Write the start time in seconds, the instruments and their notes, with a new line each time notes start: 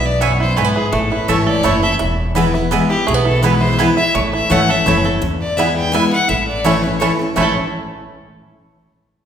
Already playing: upright bass B1, steel-string acoustic guitar B2, five-string banjo B3 E4
0.05 fiddle D5
0.20 steel-string acoustic guitar F#2, five-string banjo B3, mandolin B3 E4 B4 G#5, fiddle C#5
0.40 five-string banjo E4, fiddle C5
0.56 steel-string acoustic guitar G#2, five-string banjo A3, mandolin B3 E4 B4 G#5, fiddle B4
0.64 five-string banjo B3
0.75 five-string banjo E4, fiddle G#4
0.92 upright bass A1, steel-string acoustic guitar A2, five-string banjo A3, fiddle A4
1.10 five-string banjo E4, fiddle B4
1.27 upright bass G#1, steel-string acoustic guitar E3 A3 C#4 E4, mandolin A3 E4 C#5 A5, five-string banjo A3, fiddle C#5
1.47 five-string banjo A4, fiddle D5
1.63 upright bass F#1, steel-string acoustic guitar E3 A3 C#4 E4, mandolin A3 E4 C#5 A5, five-string banjo E4, fiddle C#5
1.82 steel-string acoustic guitar C#4 E4, five-string banjo A4, fiddle E5
1.99 upright bass E1, steel-string acoustic guitar E2, five-string banjo E4
2.35 steel-string acoustic guitar E3 G#3 B3 E4, mandolin B3 E4 B4 G#5, five-string banjo E4
2.54 steel-string acoustic guitar B3 E4, five-string banjo E4
2.71 steel-string acoustic guitar E3 G#3 B3 E4, mandolin B3 E4 B4 G#5, five-string banjo B3
2.89 steel-string acoustic guitar B3 E4, five-string banjo E4, fiddle G4
3.07 upright bass B1, steel-string acoustic guitar B2, five-string banjo A3, fiddle G#4
3.14 five-string banjo B3
3.25 five-string banjo E4, fiddle A4
3.42 steel-string acoustic guitar E3 G#3 B3 E4, five-string banjo B3, mandolin B3 E4 B4 G#5, fiddle B4
3.61 five-string banjo E4, fiddle C5
3.78 steel-string acoustic guitar E3 G#3 B3 E4, mandolin B3 E4 B4 G#5, five-string banjo E4, fiddle B4
3.97 steel-string acoustic guitar B3 E4, five-string banjo E4, fiddle E5
4.15 upright bass A1, steel-string acoustic guitar A2, five-string banjo A3, fiddle C#5
4.33 five-string banjo E4, fiddle E5
4.50 upright bass G#1, steel-string acoustic guitar E3 A3 C#4 E4, five-string banjo A3, mandolin A3 E4 C#5 A5, fiddle F#5
4.68 steel-string acoustic guitar C#4 E4, five-string banjo A4, fiddle E5
4.86 upright bass F#1, steel-string acoustic guitar E3 A3 C#4 E4, mandolin A3 E4 C#5 A5, five-string banjo E4
5.04 steel-string acoustic guitar C#4 E4, five-string banjo A4
5.22 steel-string acoustic guitar E2, upright bass E2
5.41 fiddle D5
5.57 steel-string acoustic guitar E3 G#3 B3 E4, mandolin B3 E4 B4 G#5, five-string banjo B3 E4, fiddle E5
5.76 fiddle G5
5.92 steel-string acoustic guitar E3 G#3 B3 E4, mandolin B3 E4 B4 G#5, five-string banjo B3 E4, fiddle G#5
6.12 steel-string acoustic guitar B3 E4, fiddle F#5
6.29 upright bass A1, steel-string acoustic guitar A2, fiddle E5
6.47 fiddle D5
6.64 steel-string acoustic guitar E3 A3 C#4 E4, mandolin A3 E4 C#5 A5, five-string banjo A3 C#4 E4, fiddle C#5
6.82 steel-string acoustic guitar C#4 E4, fiddle B4
6.98 steel-string acoustic guitar E3 A3 C#4 E4, mandolin A3 E4 C#5 A5, five-string banjo A3 C#4 E4, fiddle C#5
7.19 steel-string acoustic guitar C#4 E4
7.36 upright bass A1, steel-string acoustic guitar A2 E3 A3 C#4 E4, mandolin A3 E4 C#5 A5, five-string banjo A3 C#4, fiddle C#5
7.41 five-string banjo E4 A4